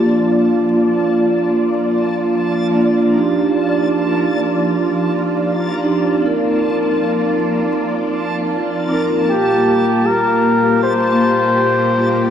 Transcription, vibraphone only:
\new Staff \with { instrumentName = "Vibraphone" } { \time 4/4 \key g \minor \tempo 4 = 78 <bes d' f'>2.~ <bes d' f'>8 <bes d' f'>8 | <d' ees' g'>2.~ <d' ees' g'>8 <d' ees' g'>8 | <c' ees' bes'>2.~ <c' ees' bes'>8 <c' ees' bes'>8 | <bes f' g'>2.~ <bes f' g'>8 <bes f' g'>8 | }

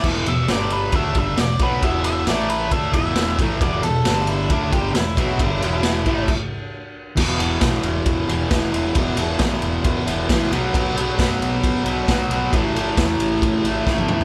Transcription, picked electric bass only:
\new Staff \with { instrumentName = "Picked electric bass" } { \clef bass \time 4/4 \key e \minor \tempo 4 = 135 e,,8 e,,8 g,,4 d,8 g,,8 e,,8 b,,8 | e,,4 a,,4 d,8 e,,4 a,,8 | e,,8 e,,8 g,,4 d,8 g,,8 e,,8 b,,8 | g,,8 e,,4 a,,8 r2 |
e,,8 e,,8 b,,8 e,,8 e,8 e,,8 e,,8 e,,8 | e,,8 e,,8 b,,8 e,,8 e,8 e,,8 a,,8 b,,8 | b,,8 b,,8 fis,8 b,,8 b,8 b,,8 b,,8 b,,8 | a,,8 a,,8 e,8 a,,8 a,8 a,,8 a,,8 d,8 | }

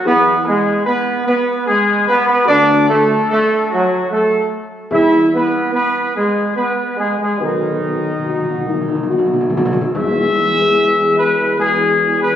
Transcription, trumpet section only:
\new Staff \with { instrumentName = "Trumpet section" } { \time 3/4 \key e \major \tempo 4 = 73 b'8 gis'8 b'8 b'8 gis'8 b'16 b'16 | d''8 a'8 a'8 fis'8 a'8 r8 | e''8 b'8 b'8 gis'8 b'8 gis'16 gis'16 | dis'2~ dis'8 r8 |
e''4. b'8 gis'8. b'16 | }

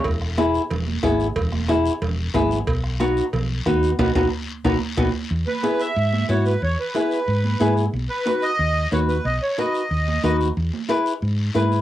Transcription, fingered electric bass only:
\new Staff \with { instrumentName = "Fingered electric bass" } { \clef bass \time 4/4 \key e \major \tempo 4 = 182 e,,2 e,,4 gis,,4 | e,,2 e,,4 gis,,4 | b,,2 b,,4 dis,4 | b,,8 b,,8 r4 b,,8 r8 b,,8 r8 |
e,8 r4. gis,4 gis,4 | e,8 r4. gis,4 gis,4 | b,,8 r4. dis,4 dis,4 | b,,8 r4. dis,4 dis,4 |
e,8 r4. gis,4 gis,4 | }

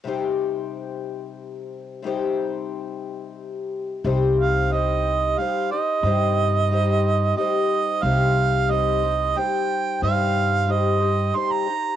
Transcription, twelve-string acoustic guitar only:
\new Staff \with { instrumentName = "Twelve-string acoustic guitar" } { \time 3/4 \key c \minor \tempo 4 = 90 <c g ees' g' c''>2. | <c g ees' g' c''>2. | <c g ees' g' c''>4 <g ees' g' c''>4 <g ees' g' c''>8 <ees' g' c''>8 | <c g ees' g' c''>4 <g ees' g' c''>4 <g ees' g' c''>4 |
<c g ees' g' c''>4 <g ees' g' c''>8 <ees' g' c''>8 <g ees' g' c''>4 | <c g ees' g' c''>4 <g ees' g' c''>8 <ees' g' c''>8 <g ees' g' c''>8 <ees' g' c''>8 | }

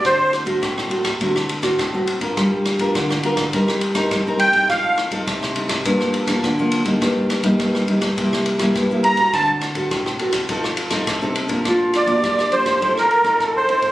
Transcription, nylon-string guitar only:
\new Staff \with { instrumentName = "Nylon-string guitar" } { \time 4/4 \key g \minor \tempo 4 = 103 << { <a c' fis'>8. <a c' fis'>8. <a c' fis'>16 r16 <a c' fis'>8 r16 <a c' fis'>8 <a c' fis'>8 <d' f' bes'>16~ | <d' f' bes'>8. <d' f' bes'>8. <d' f' bes'>16 r16 <c' ees' bes'>8 r16 <c' ees' bes'>8 <c' ees' bes'>8 <c' ees' a'>16~ | <c' ees' a'>8. <c' ees' a'>8. <c' ees' a'>8 <f bes d'>8. <f bes d'>8 <f bes d'>8 <g bes ees'>16~ | <g bes ees'>8. <g bes ees'>8. <g bes ees'>16 r16 <g bes e'>8. <g bes e'>8 <g bes e'>8 <c' fis' a'>16~ |
<c' fis' a'>8. <c' fis' a'>8. <c' fis' a'>8 <c' ees' a'>8 r16 <c' ees' a'>8 <c' ees' a'>8 <f bes d'>16~ | \key bes \major <f bes d'>8. <f bes d'>8. <f bes d'>8 <f c' ees'>8. <f c' ees'>8. <f c' ees'>8 | } \\ { d4 a,4 d4 a,4 | g4 d4 g4 g4 | f4 c4 g,4 d4 | g,4 g,4 c4 g,4 |
d4 a,4 f4 c4 | bes,4 f4 a,4 a,4 | } >> }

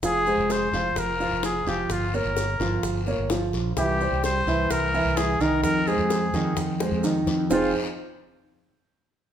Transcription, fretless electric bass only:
\new Staff \with { instrumentName = "Fretless electric bass" } { \clef bass \time 4/4 \key f \minor \tempo 4 = 128 f,,8. f,,8. f,,8 f,,8. f,,8. f,,8 | g,,8. g,,8. g,,8 g,,8. g,,8. bes,,8 | c,8. c,8. c,8 c,8. c,8. c,8 | f,8. f,8. f,8 f,8. f,8. f,8 |
f,,8 r2. r8 | }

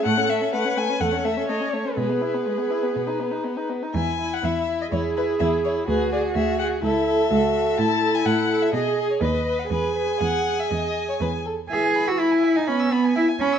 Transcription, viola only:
\new Staff \with { instrumentName = "Viola" } { \time 4/4 \key e \major \tempo 4 = 124 a'4 b'4 a'4 cis''4 | gis'2.~ gis'8 r8 | r2 gis'2 | fis'2 e'4 fis'4 |
e'2 gis'4 b'4 | gis'2.~ gis'8 r8 | e4 r4 b4 r4 | }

